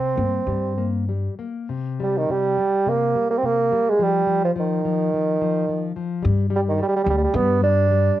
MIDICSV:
0, 0, Header, 1, 4, 480
1, 0, Start_track
1, 0, Key_signature, -3, "minor"
1, 0, Tempo, 606061
1, 1338, Time_signature, 4, 2, 24, 8
1, 1338, Tempo, 584795
1, 2778, Tempo, 559701
1, 6857, End_track
2, 0, Start_track
2, 0, Title_t, "Bassoon"
2, 0, Program_c, 0, 70
2, 0, Note_on_c, 0, 60, 68
2, 818, Note_off_c, 0, 60, 0
2, 1617, Note_on_c, 0, 55, 61
2, 1737, Note_on_c, 0, 51, 64
2, 1749, Note_off_c, 0, 55, 0
2, 1845, Note_on_c, 0, 55, 80
2, 1857, Note_off_c, 0, 51, 0
2, 2321, Note_on_c, 0, 58, 76
2, 2334, Note_off_c, 0, 55, 0
2, 2661, Note_off_c, 0, 58, 0
2, 2666, Note_on_c, 0, 58, 74
2, 2723, Note_on_c, 0, 60, 67
2, 2735, Note_off_c, 0, 58, 0
2, 2785, Note_on_c, 0, 58, 88
2, 2798, Note_off_c, 0, 60, 0
2, 3163, Note_on_c, 0, 56, 77
2, 3176, Note_off_c, 0, 58, 0
2, 3274, Note_on_c, 0, 55, 76
2, 3287, Note_off_c, 0, 56, 0
2, 3631, Note_off_c, 0, 55, 0
2, 3636, Note_on_c, 0, 53, 71
2, 3690, Note_off_c, 0, 53, 0
2, 3763, Note_on_c, 0, 51, 67
2, 4912, Note_off_c, 0, 51, 0
2, 5445, Note_on_c, 0, 55, 62
2, 5491, Note_off_c, 0, 55, 0
2, 5558, Note_on_c, 0, 51, 68
2, 5656, Note_off_c, 0, 51, 0
2, 5673, Note_on_c, 0, 55, 71
2, 5719, Note_off_c, 0, 55, 0
2, 5728, Note_on_c, 0, 55, 65
2, 5777, Note_off_c, 0, 55, 0
2, 5793, Note_on_c, 0, 55, 70
2, 5840, Note_off_c, 0, 55, 0
2, 5858, Note_on_c, 0, 55, 67
2, 5904, Note_off_c, 0, 55, 0
2, 5910, Note_on_c, 0, 55, 71
2, 5960, Note_off_c, 0, 55, 0
2, 5977, Note_on_c, 0, 55, 64
2, 6025, Note_off_c, 0, 55, 0
2, 6031, Note_on_c, 0, 55, 77
2, 6131, Note_on_c, 0, 59, 91
2, 6143, Note_off_c, 0, 55, 0
2, 6369, Note_off_c, 0, 59, 0
2, 6373, Note_on_c, 0, 62, 99
2, 6857, Note_off_c, 0, 62, 0
2, 6857, End_track
3, 0, Start_track
3, 0, Title_t, "Nylon-string guitar"
3, 0, Program_c, 1, 24
3, 0, Note_on_c, 1, 48, 44
3, 125, Note_on_c, 1, 58, 35
3, 128, Note_off_c, 1, 48, 0
3, 359, Note_off_c, 1, 58, 0
3, 372, Note_on_c, 1, 55, 41
3, 604, Note_off_c, 1, 55, 0
3, 615, Note_on_c, 1, 58, 37
3, 850, Note_off_c, 1, 58, 0
3, 862, Note_on_c, 1, 55, 36
3, 1095, Note_off_c, 1, 55, 0
3, 1099, Note_on_c, 1, 58, 36
3, 1331, Note_off_c, 1, 58, 0
3, 1338, Note_on_c, 1, 48, 51
3, 1589, Note_on_c, 1, 55, 49
3, 1822, Note_off_c, 1, 48, 0
3, 1822, Note_off_c, 1, 55, 0
3, 1832, Note_on_c, 1, 48, 49
3, 2062, Note_on_c, 1, 55, 38
3, 2063, Note_off_c, 1, 48, 0
3, 2295, Note_off_c, 1, 55, 0
3, 2299, Note_on_c, 1, 48, 51
3, 2532, Note_off_c, 1, 48, 0
3, 2538, Note_on_c, 1, 55, 38
3, 2767, Note_on_c, 1, 48, 38
3, 2768, Note_off_c, 1, 55, 0
3, 3008, Note_off_c, 1, 48, 0
3, 3015, Note_on_c, 1, 55, 44
3, 3247, Note_on_c, 1, 53, 54
3, 3252, Note_off_c, 1, 55, 0
3, 3473, Note_off_c, 1, 53, 0
3, 3483, Note_on_c, 1, 53, 48
3, 3722, Note_off_c, 1, 53, 0
3, 3732, Note_on_c, 1, 53, 52
3, 3972, Note_off_c, 1, 53, 0
3, 3982, Note_on_c, 1, 53, 42
3, 4221, Note_off_c, 1, 53, 0
3, 4231, Note_on_c, 1, 53, 49
3, 4457, Note_off_c, 1, 53, 0
3, 4467, Note_on_c, 1, 53, 46
3, 4692, Note_off_c, 1, 53, 0
3, 4702, Note_on_c, 1, 53, 42
3, 4926, Note_off_c, 1, 53, 0
3, 4936, Note_on_c, 1, 53, 44
3, 5162, Note_on_c, 1, 55, 59
3, 5166, Note_off_c, 1, 53, 0
3, 5391, Note_off_c, 1, 55, 0
3, 5401, Note_on_c, 1, 55, 59
3, 5629, Note_off_c, 1, 55, 0
3, 5639, Note_on_c, 1, 55, 57
3, 5869, Note_off_c, 1, 55, 0
3, 5880, Note_on_c, 1, 55, 51
3, 6107, Note_off_c, 1, 55, 0
3, 6118, Note_on_c, 1, 55, 63
3, 6349, Note_off_c, 1, 55, 0
3, 6359, Note_on_c, 1, 55, 54
3, 6599, Note_off_c, 1, 55, 0
3, 6610, Note_on_c, 1, 55, 44
3, 6848, Note_off_c, 1, 55, 0
3, 6857, End_track
4, 0, Start_track
4, 0, Title_t, "Upright bass"
4, 0, Program_c, 2, 32
4, 138, Note_on_c, 2, 43, 62
4, 290, Note_off_c, 2, 43, 0
4, 369, Note_on_c, 2, 43, 58
4, 999, Note_off_c, 2, 43, 0
4, 5180, Note_on_c, 2, 43, 78
4, 5642, Note_off_c, 2, 43, 0
4, 5883, Note_on_c, 2, 38, 80
4, 6040, Note_off_c, 2, 38, 0
4, 6119, Note_on_c, 2, 43, 84
4, 6755, Note_off_c, 2, 43, 0
4, 6857, End_track
0, 0, End_of_file